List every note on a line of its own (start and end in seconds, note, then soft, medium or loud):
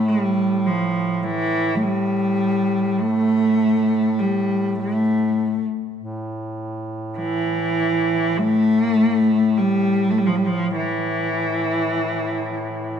0.00 5.79 A2 soft
0.08 0.68 G3 medium
0.66 1.25 F3 medium
1.24 1.77 E3 medium
1.75 1.84 A3 medium
1.82 3.01 G3 medium
3.00 4.20 A3 medium
4.19 4.77 G3 medium
4.79 5.63 A3 medium
5.96 13.00 A2 soft
7.17 8.40 E3 medium
8.38 9.59 A3 medium
9.58 10.12 G3 medium
10.10 10.19 A3 medium
10.18 10.28 G3 medium
10.26 10.37 F3 medium
10.36 10.48 G3 medium
10.46 10.75 F3 medium
10.76 13.00 E3 medium